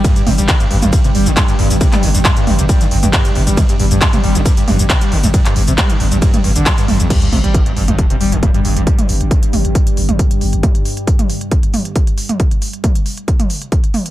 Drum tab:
CC |----------------|----------------|----------------|----------------|
RD |x---x---x---x---|x---x---x---x---|x---x---x---x---|x---x---x---x---|
HH |xxoxxxoxxxoxxxox|xxoxxxoxxxoxxxox|xxoxxxoxxxoxxxox|xxoxxxoxxxoxxxox|
SH |xx-xxx-xxx-xxx-x|xx-xxx-xxx-xxx-x|xx-xxx-xxx-xxx-x|xx-xxx-xxx-xxx-x|
CP |----x-------x---|-x--x-------x---|----x-------x---|-x--x-------x---|
T2 |--o----o----o---|-o----o----o----|o----o----o----o|----o----o----o-|
BD |o---o---o---o---|o---o---o---o---|o---o---o---o---|o---o---o---o---|

CC |x---------------|----------------|----------------|----------------|
RD |----------------|----------------|----------------|----------------|
HH |xxoxxxoxxxoxxxox|xxoxxxoxxxoxxxox|xxoxxxoxxxoxxxox|xxoxxxoxxxoxxxox|
SH |----------------|----------------|----------------|----------------|
CP |----------------|----------------|----------------|----------------|
T2 |--o----o----o---|-o----o----o----|o----o----o----o|----o----o----o-|
BD |o---o---o---o---|o---o---o---o---|o---o---o---o---|o---o---o---o---|